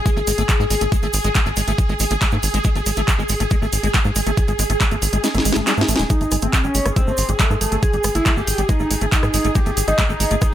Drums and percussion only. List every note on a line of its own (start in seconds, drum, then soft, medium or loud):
0.06 kick loud
0.06 closed hi-hat medium
0.06 shaker medium
0.17 shaker soft
0.27 open hi-hat loud
0.27 shaker medium
0.38 closed hi-hat soft
0.38 shaker soft
0.49 kick loud
0.49 clap loud
0.49 closed hi-hat medium
0.49 shaker medium
0.61 shaker soft
0.70 open hi-hat medium
0.70 shaker medium
0.81 closed hi-hat medium
0.81 shaker soft
0.92 kick loud
0.92 closed hi-hat medium
0.92 shaker soft
1.03 closed hi-hat soft
1.03 shaker soft
1.13 open hi-hat loud
1.13 shaker loud
1.24 closed hi-hat medium
1.24 shaker soft
1.35 kick loud
1.35 clap loud
1.35 closed hi-hat medium
1.35 shaker soft
1.46 shaker soft
1.56 open hi-hat medium
1.56 shaker medium
1.68 closed hi-hat medium
1.68 shaker soft
1.78 kick loud
1.78 closed hi-hat medium
1.78 shaker soft
1.89 shaker soft
1.99 open hi-hat loud
1.99 shaker loud
2.10 closed hi-hat medium
2.10 shaker soft
2.22 kick loud
2.22 clap loud
2.22 closed hi-hat medium
2.22 shaker soft
2.31 shaker soft
2.43 open hi-hat medium
2.43 shaker medium
2.54 closed hi-hat medium
2.54 shaker soft
2.64 kick loud
2.64 closed hi-hat medium
2.64 shaker soft
2.76 closed hi-hat soft
2.76 shaker soft
2.86 open hi-hat loud
2.86 shaker medium
2.96 closed hi-hat medium
2.96 shaker soft
3.08 kick loud
3.08 clap loud
3.08 closed hi-hat medium
3.08 shaker medium
3.19 shaker soft
3.29 open hi-hat medium
3.29 shaker medium
3.40 closed hi-hat medium
3.40 shaker soft
3.51 kick loud
3.51 closed hi-hat medium
3.51 shaker soft
3.62 shaker soft
3.73 open hi-hat loud
3.73 shaker medium
3.83 closed hi-hat medium
3.83 shaker soft
3.94 kick loud
3.94 clap loud
3.94 closed hi-hat medium
3.94 shaker soft
4.04 shaker soft
4.15 open hi-hat medium
4.15 shaker loud
4.26 closed hi-hat medium
4.26 shaker soft
4.37 kick loud
4.37 closed hi-hat medium
4.37 shaker soft
4.48 closed hi-hat soft
4.48 shaker soft
4.59 open hi-hat loud
4.59 shaker medium
4.70 closed hi-hat medium
4.70 shaker soft
4.81 kick loud
4.81 clap loud
4.81 closed hi-hat medium
4.81 shaker medium
4.91 closed hi-hat soft
4.91 shaker soft
5.02 open hi-hat medium
5.02 shaker medium
5.13 closed hi-hat medium
5.13 shaker soft
5.24 snare medium
5.24 closed hi-hat medium
5.24 shaker medium
5.34 snare medium
5.34 closed hi-hat soft
5.34 shaker soft
5.45 open hi-hat loud
5.45 shaker medium
5.53 snare medium
5.53 closed hi-hat medium
5.53 shaker soft
5.67 snare medium
5.67 clap loud
5.67 closed hi-hat medium
5.67 shaker medium
5.77 shaker soft
5.81 snare loud
5.88 open hi-hat medium
5.88 shaker medium
5.96 snare loud
5.96 closed hi-hat medium
5.96 shaker soft
6.10 kick loud
6.10 closed hi-hat medium
6.10 shaker medium
6.21 closed hi-hat soft
6.21 shaker soft
6.31 cross-stick soft
6.31 open hi-hat loud
6.31 shaker medium
6.42 closed hi-hat medium
6.42 shaker soft
6.53 kick loud
6.53 clap loud
6.53 closed hi-hat medium
6.53 shaker medium
6.64 shaker soft
6.75 open hi-hat medium
6.75 shaker medium
6.86 cross-stick medium
6.86 closed hi-hat medium
6.86 shaker soft
6.96 kick loud
6.96 closed hi-hat medium
6.96 shaker soft
7.07 shaker soft
7.17 open hi-hat loud
7.17 shaker medium
7.28 closed hi-hat medium
7.28 shaker soft
7.39 kick loud
7.39 clap loud
7.39 closed hi-hat medium
7.39 shaker medium
7.50 cross-stick soft
7.50 shaker soft
7.61 open hi-hat medium
7.61 shaker loud
7.72 closed hi-hat medium
7.72 shaker soft
7.83 kick loud
7.83 closed hi-hat medium
7.83 shaker medium
7.93 closed hi-hat soft
7.93 shaker soft
8.04 cross-stick medium
8.04 open hi-hat loud
8.04 shaker loud
8.15 closed hi-hat medium
8.15 shaker soft
8.26 kick loud
8.26 clap loud
8.26 closed hi-hat medium
8.26 shaker medium
8.37 shaker soft
8.47 open hi-hat loud
8.47 shaker loud
8.58 closed hi-hat medium
8.58 shaker soft
8.69 kick loud
8.69 cross-stick soft
8.69 closed hi-hat medium
8.69 shaker soft
8.79 shaker soft
8.91 open hi-hat loud
8.91 shaker loud
9.01 closed hi-hat medium
9.01 shaker soft
9.12 kick loud
9.12 clap loud
9.12 closed hi-hat medium
9.12 shaker medium
9.23 cross-stick medium
9.23 shaker soft
9.34 open hi-hat loud
9.34 shaker loud
9.44 closed hi-hat medium
9.44 shaker soft
9.55 kick loud
9.55 closed hi-hat medium
9.55 shaker medium
9.66 closed hi-hat soft
9.66 shaker soft
9.77 open hi-hat loud
9.77 shaker medium
9.88 cross-stick soft
9.88 closed hi-hat medium
9.88 shaker soft
9.98 kick loud
9.98 clap loud
9.98 closed hi-hat medium
9.98 shaker medium
10.10 shaker soft
10.20 open hi-hat loud
10.20 shaker medium
10.30 closed hi-hat medium
10.30 shaker soft
10.41 kick loud
10.41 cross-stick medium
10.41 closed hi-hat medium
10.41 shaker medium